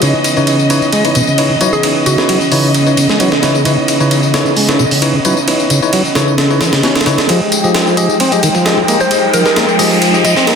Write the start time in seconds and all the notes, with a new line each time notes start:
Already playing: D#5
0.02 C#3 E3 B3 D#4 E4 B4 C#5, ride, tambourine
0.24 ride, tambourine
0.37 C#3 D#4 E4 B4 C#5, tambourine
0.47 ride, tambourine
0.59 tambourine
0.70 D#4 E4 B4 C#5, ride, tambourine
0.82 tambourine
0.93 G#3, ride, tambourine
1.05 D#4 E4 B4 C#5, ride, tambourine
1.15 B2, ride, tambourine
1.27 C#3, tambourine
1.38 D#4 E4 B4 C#5, ride, tambourine
1.51 C#3
1.61 F#3 D#4 E4 B4 C#5, ride, tambourine
1.73 G#4, tambourine
1.83 D#4 E4 B4 C#5, ride, tambourine
2.06 C#3 F#4, ride, tambourine
2.18 D#4 E4 F#4 B4 C#5, snare, tambourine
2.29 F#3, ride, tambourine
2.41 tambourine
2.52 C#3 D#4 E4 B4 C#5, open hi-hat, tambourine
2.64 tambourine
2.74 ride, tambourine
2.87 D#4 E4 B4 C#5, tambourine
2.97 C#3, ride, tambourine
3.09 G#3, snare, tambourine
3.20 F#3 D#4 E4 B4 C#5, ride, tambourine
3.32 snare
3.43 C#3 D#4 E4 B4 C#5, snare, ride, tambourine
3.55 tambourine
3.65 C#3 D#4 E4 B4 C#5, ride, tambourine
3.88 ride, tambourine
4.00 C#3 D#4 E4 B4 C#5, tambourine
4.11 ride, tambourine
4.23 tambourine
4.34 D#4 E4 B4 C#5, snare, ride, tambourine
4.46 tambourine
4.56 G#3, open hi-hat, tambourine
4.68 D#4 E4 B4 C#5, snare, ride, tambourine
4.79 B2, tambourine
4.91 C#3, open hi-hat, tambourine
5.02 D#4 E4 B4 C#5, ride, tambourine
5.14 C#3
5.25 F#3 D#4 E4 B4 C#5, ride, tambourine
5.37 tambourine
5.47 D#4 E4 B4 C#5, ride, tambourine
5.60 tambourine
5.70 C#3, ride, tambourine
5.82 D#4 E4 B4 C#5, tambourine
5.93 F#3, ride, tambourine
6.05 tambourine
6.15 C#3 D#4 E4 B4 C#5, snare, ride, tambourine
6.28 tambourine
6.38 snare, ride, tambourine
6.50 D#4 E4 B4 C#5, tambourine
6.61 E3, snare, ride, tambourine
6.73 C#3, snare, ride, tambourine
6.83 C#4 D#4 E4 B4 C#5, snare, ride, tambourine
6.96 snare, ride
7.01 snare, ride
7.06 C#3 D#4 E4 B4 C#5, snare, ride, tambourine
7.18 snare, ride, tambourine
7.29 F3 G#3 D#4 G4 G#4 D#5 G5, kick, ride, tambourine, riser
7.52 ride, tambourine
7.64 F3 G4 G#4 D#5, tambourine
7.75 snare, ride, tambourine
7.87 tambourine
7.97 G4 G#4 D#5, ride, tambourine
8.10 tambourine
8.20 C4, ride, tambourine
8.32 G4 G#4 D#5, ride, tambourine
8.43 D#3, ride, tambourine
8.55 F3, kick, tambourine
8.65 G4 G#4 D#5, snare, ride, tambourine
8.78 F3, kick
8.88 A#3 G4 G#4 D#5, ride, tambourine
9.00 C5, tambourine
9.11 G4 G#4 D#5, kick, ride, tambourine
9.34 F3 A#4, ride, tambourine
9.46 G4 G#4 A#4 D#5, snare, tambourine
9.56 A#3, snare, ride, tambourine
9.69 tambourine
9.79 F3 G4 G#4 D#5, open hi-hat, tambourine
9.91 kick, tambourine
10.02 ride, tambourine
10.14 G4 G#4 D#5, tambourine
10.25 F3 D#5, kick, ride, tambourine
10.36 C4 D#5, snare, tambourine
10.47 A#3 G4 G#4 D#5, snare, ride, tambourine